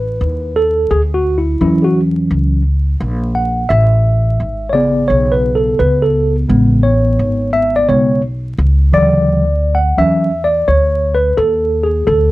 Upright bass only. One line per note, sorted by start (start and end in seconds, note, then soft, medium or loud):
0.00 0.18 A1 medium
0.21 0.87 D#2 medium
0.91 1.57 D2 loud
1.61 2.27 E2 medium
2.31 2.97 C#2 medium
3.00 3.67 A#1 loud
3.70 4.36 A1 loud
4.40 5.06 G#1 medium
5.10 5.76 B1 medium
5.80 6.46 C#2 loud
6.50 7.16 A1 loud
7.19 7.85 G#1 medium
7.89 8.55 B1 medium
8.58 8.92 C#2 loud
8.93 9.94 D2 loud
9.98 10.64 E2 medium
10.68 11.34 D2 medium
11.37 12.04 D#2 loud
12.07 12.32 D2 loud